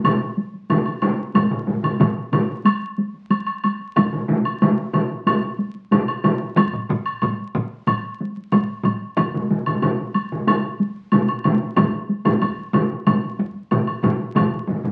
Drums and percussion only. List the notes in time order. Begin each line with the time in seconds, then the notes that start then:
0.04 taiko low-mid, taiko high, high woodblock
0.21 taiko high
0.37 taiko high
0.54 taiko high
0.70 taiko low-mid, taiko high, high woodblock
0.86 taiko high, high woodblock
1.02 taiko low-mid, taiko high, high woodblock
1.18 taiko high
1.35 taiko, taiko low-mid, taiko mid, taiko high, high woodblock
1.51 taiko low-mid, taiko mid, taiko high
1.67 taiko low-mid, taiko mid, taiko high
1.84 taiko low-mid, taiko mid, high woodblock
2.00 taiko, taiko low-mid, taiko mid, taiko high, high woodblock
2.15 taiko high
2.32 taiko low-mid, taiko mid, taiko high, high woodblock
2.48 taiko high
2.65 taiko high, high woodblock
2.82 taiko high
2.98 taiko high
3.14 taiko high
3.30 taiko high, high woodblock
3.46 taiko high, high woodblock
3.64 taiko high, high woodblock
3.81 taiko high
3.96 taiko, taiko low-mid, taiko high, high woodblock
4.13 taiko low-mid
4.29 taiko low-mid, taiko high
4.45 high woodblock
4.62 taiko low-mid, taiko high, high woodblock
4.78 taiko high
4.93 taiko low-mid, taiko high, high woodblock
5.11 taiko high
5.26 taiko low-mid, taiko high, high woodblock
5.43 taiko high
5.59 taiko high
5.75 taiko high
5.91 taiko low-mid, taiko high, high woodblock
6.08 high woodblock
6.24 taiko low-mid, taiko high, high woodblock
6.41 taiko high
6.56 taiko, taiko mid, taiko high, high woodblock
6.73 taiko mid, taiko high
6.89 taiko mid, taiko high
7.06 high woodblock
7.22 taiko mid, taiko high, high woodblock
7.40 taiko high
7.55 taiko mid, taiko high
7.72 taiko high
7.87 taiko mid, taiko high, high woodblock
8.04 taiko high
8.20 taiko high
8.37 taiko high
8.52 taiko mid, taiko high, high woodblock
8.84 taiko mid, taiko high, high woodblock
9.02 taiko high
9.17 taiko, taiko low-mid, taiko high, high woodblock
9.34 taiko low-mid, taiko high
9.50 taiko low-mid, taiko high
9.66 taiko low-mid, high woodblock
9.82 taiko low-mid, taiko high, high woodblock
9.99 taiko high
10.14 taiko high, high woodblock
10.31 taiko low-mid, taiko high
10.47 taiko low-mid, taiko high, high woodblock
10.80 taiko high
11.12 taiko low-mid, taiko high, high woodblock
11.28 taiko high, high woodblock
11.44 taiko low-mid, taiko high, high woodblock
11.76 taiko, taiko low-mid, taiko mid, taiko high, high woodblock
11.94 taiko high
12.09 taiko high
12.25 taiko low-mid, taiko mid, taiko high, high woodblock
12.42 taiko, taiko high, high woodblock
12.58 taiko high
12.74 taiko low-mid, taiko mid, taiko high, high woodblock
12.91 taiko high
13.07 taiko low-mid, taiko mid, taiko high, high woodblock
13.23 taiko high
13.39 taiko, taiko high
13.55 taiko high
13.71 taiko low-mid, taiko mid, taiko high, high woodblock
13.87 high woodblock
14.03 taiko low-mid, taiko mid, taiko high, high woodblock
14.19 taiko high
14.35 taiko, taiko low-mid, taiko mid, taiko high, high woodblock
14.68 taiko low-mid, taiko mid, taiko high
14.84 taiko low-mid, taiko mid, taiko high